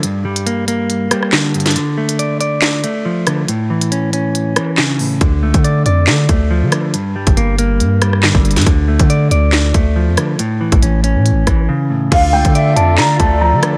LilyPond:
<<
  \new Staff \with { instrumentName = "Grand piano" } { \time 4/4 \key d \minor \tempo 4 = 139 r1 | r1 | r1 | r1 |
r1 | r1 | r1 | f''8 g''4 a''8 bes''8 a''8 bes''8 r8 | }
  \new Staff \with { instrumentName = "Pan flute" } { \time 4/4 \key d \minor r1 | r1 | r1 | r1 |
r1 | r1 | r1 | f''4 e''4 d''2 | }
  \new Staff \with { instrumentName = "String section" } { \time 4/4 \key d \minor r1 | r1 | r1 | r1 |
r1 | r1 | r1 | <d f' a'>1 | }
  \new Staff \with { instrumentName = "Clean electric guitar" } { \clef bass \time 4/4 \key d \minor g,8 g8 bes8 bes4 g8 d8 g,8 | d8 a8 d''8 d''4 a8 f8 d8 | a,8 e8 cis'8 cis'4 e8 cis8 a,8 | d8 a8 d''8 d''4 a8 f8 d8 |
g,8 g8 bes8 bes4 g8 d8 g,8 | d8 a8 d''8 d''4 a8 f8 d8 | a,8 e8 cis'8 cis'4 e8 cis8 a,8 | d8 a8 d''8 d''4 a8 f8 d8 | }
  \new Staff \with { instrumentName = "808-style bass" } { \clef bass \time 4/4 \key d \minor r1 | r1 | r1 | d,8 cis,16 d8. f,8 d8 d,8. d16 r8 |
r8. g,,16 g,,4 g,4~ g,16 g,,8 g,16 | d,8. d8. d,4 d,8. f,16 r8 | r8. a,,16 a,,8. a,16. a,,16. a,,8 r4 | d,8 cis,16 d8. f,8 d8 d,8. d16 r8 | }
  \new DrumStaff \with { instrumentName = "Drums" } \drummode { \time 4/4 hh8. hh16 hh8 hh8 hh8 <hh ss>16 ss16 <hc sn>8 hh32 hh32 <hh sn>32 hh32 | hh8. hh16 hh8 hh8 <hc hh sn>8 hh8 r8 <hh ss>8 | hh8. hh16 hh8 hh8 hh8 <hh ss>8 <hc sn>8 hho8 | <hh bd>8. <hh bd>16 hh8 hh8 <hc hh sn>8 <hh bd>8 r8 <hh ss>8 |
hh8. <hh bd>16 hh8 hh8 hh8 <hh ss>16 ss16 <hc sn>16 bd16 hh32 hh32 <hh sn>32 hh32 | <hh bd>8. <hh bd>16 hh8 hh8 <hc hh sn>8 <hh bd>8 r8 <hh ss>8 | hh8. <hh bd>16 hh8 hh8 hh8 <hh bd ss>8 r4 | <cymc hh bd>8. <hh bd>16 hh8 hh8 <hc hh sn>8 <hh bd>8 r8 <hh ss>8 | }
>>